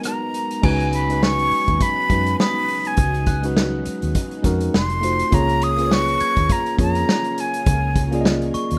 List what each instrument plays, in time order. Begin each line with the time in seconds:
Already playing: string machine G#3 B3 D#4 F#4 A#4, tine electric piano G#3 B3 D#4 F#4 A#4
0.03 flute A#5, cross-stick, closed hi-hat
0.34 closed hi-hat
0.51 closed hi-hat
0.62 fingered electric bass C#2, string machine C#3 F#3 G#3 B3 D#4, tine electric piano G#3 C#4 D#4 F#4 B4, glockenspiel G#5, flute G#5, kick, crash
0.80 closed hi-hat
0.93 flute B5, closed hi-hat
1.09 tine electric piano G#3 C#4 D#4 F#4 B4, closed hi-hat
1.23 flute C#6, snare
1.39 closed hi-hat
1.51 muted fingered electric bass stroke, open hi-hat
1.68 fingered electric bass D#2, kick, closed hi-hat
1.80 flute B5, kick, closed hi-hat
2.09 fingered electric bass F#2, tine electric piano G#3 C#4 D#4 F#4 B4, kick, closed hi-hat
2.27 closed hi-hat
2.40 flute B5, glockenspiel D#6, snare
2.68 open hi-hat
2.85 flute G#5, closed hi-hat
2.97 fingered electric bass C#2, kick, closed hi-hat
3.14 closed hi-hat
3.26 glockenspiel F#6, kick, closed hi-hat
3.42 tine electric piano G#3 C#4 D#4 F#4 B4, closed hi-hat
3.57 snare
3.86 muted fingered electric bass stroke, closed hi-hat
4.02 fingered electric bass D#2, closed hi-hat
4.15 kick, closed hi-hat
4.31 closed hi-hat
4.43 fingered electric bass F2, tine electric piano G#3 C#4 D#4 F#4 A#4, kick, snare, closed hi-hat
4.61 closed hi-hat
4.74 fingered electric bass F1, string machine F3 C4 A4, flute C6, snare
4.90 closed hi-hat
5.01 tine electric piano A3 D#4 F4 F#4 C5, closed hi-hat
5.19 closed hi-hat
5.31 fingered electric bass C#2, string machine C#3 C#4 F4 G#4 A#4, tine electric piano A#3 C#4 F4 G#4 C#5, flute A#5, kick, closed hi-hat
5.49 closed hi-hat
5.62 flute D#6, closed hi-hat
5.77 tine electric piano A#3 C#4 F4 G#4 B4, closed hi-hat
5.87 tine electric piano C#5
5.91 flute C#6, snare
6.08 closed hi-hat
6.20 glockenspiel G#6, muted fingered electric bass stroke, closed hi-hat
6.36 fingered electric bass D#2, kick, closed hi-hat
6.49 flute A#5, kick, closed hi-hat
6.66 closed hi-hat
6.77 fingered electric bass F2, tine electric piano A#3 C#4 F4 G#4 C#5, kick, closed hi-hat
6.81 flute A#5
6.95 closed hi-hat
7.09 snare
7.24 closed hi-hat
7.38 flute G#5, closed hi-hat
7.54 closed hi-hat
7.66 fingered electric bass C#2, kick, closed hi-hat
7.96 kick, closed hi-hat
8.11 tine electric piano A#3 C#4 F4 G#4 D5, closed hi-hat
8.21 tine electric piano D#5
8.25 snare
8.42 closed hi-hat
8.54 glockenspiel C#6, muted fingered electric bass stroke, closed hi-hat
8.71 fingered electric bass D#2, closed hi-hat